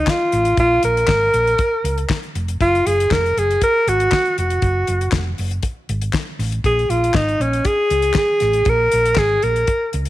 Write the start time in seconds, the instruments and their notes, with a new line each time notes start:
Already playing: alto saxophone D#4
0.07 alto saxophone F4, kick, snare, clap
0.32 fingered electric bass A1, closed hi-hat
0.45 closed hi-hat
0.57 fingered electric bass A#1, alto saxophone F4, kick, closed hi-hat
0.83 fingered electric bass A#1, alto saxophone A#4, closed hi-hat
0.97 closed hi-hat
1.08 fingered electric bass G#1, kick, snare, clap
1.34 fingered electric bass A#1, closed hi-hat
1.47 closed hi-hat
1.58 kick, closed hi-hat
1.84 fingered electric bass C#2, closed hi-hat
1.98 closed hi-hat
2.10 kick, snare, clap
2.23 closed hi-hat
2.35 fingered electric bass F1, closed hi-hat
2.48 closed hi-hat
2.61 fingered electric bass F#1, alto saxophone F4, kick, closed hi-hat
2.75 closed hi-hat
2.86 fingered electric bass F#1, alto saxophone G#4, closed hi-hat
3.00 closed hi-hat
3.11 fingered electric bass F1, alto saxophone A#4, kick, snare, clap
3.26 closed hi-hat
3.37 fingered electric bass F#1, alto saxophone G#4, closed hi-hat
3.51 closed hi-hat
3.61 alto saxophone A#4, kick, closed hi-hat
3.87 fingered electric bass G#1, alto saxophone F#4, closed hi-hat
4.00 closed hi-hat
4.12 kick, snare, clap
4.25 closed hi-hat
4.38 fingered electric bass F1, alto saxophone F#4, closed hi-hat
4.50 closed hi-hat
4.62 fingered electric bass F#1, kick, closed hi-hat
4.87 fingered electric bass F#1, closed hi-hat
5.01 closed hi-hat
5.12 fingered electric bass F1, kick, snare, clap
5.38 fingered electric bass F#1, open hi-hat
5.51 closed hi-hat
5.63 kick, closed hi-hat
5.89 fingered electric bass G#1, closed hi-hat
6.02 closed hi-hat
6.13 kick, snare, clap
6.39 fingered electric bass A1, snare, open hi-hat
6.52 closed hi-hat
6.64 fingered electric bass A#1, alto saxophone G#4, kick, closed hi-hat
6.79 closed hi-hat
6.89 fingered electric bass A#1, alto saxophone F4, closed hi-hat
7.04 closed hi-hat
7.14 fingered electric bass G#1, alto saxophone D#4, kick, snare, clap
7.29 closed hi-hat
7.40 fingered electric bass A#1, alto saxophone C#4, closed hi-hat
7.53 closed hi-hat
7.65 alto saxophone G#4, kick, closed hi-hat
7.90 fingered electric bass C#2, closed hi-hat
8.02 closed hi-hat
8.14 alto saxophone G#4, kick, snare, clap
8.40 fingered electric bass A1, snare, closed hi-hat
8.53 closed hi-hat
8.65 fingered electric bass A#1, alto saxophone A#4, kick, closed hi-hat
8.92 fingered electric bass A#1, closed hi-hat
9.05 closed hi-hat
9.16 fingered electric bass G#1, alto saxophone G#4, kick, snare, clap
9.42 fingered electric bass A#1, alto saxophone A#4, closed hi-hat
9.56 closed hi-hat
9.67 kick, closed hi-hat
9.93 fingered electric bass C#2, closed hi-hat
10.05 closed hi-hat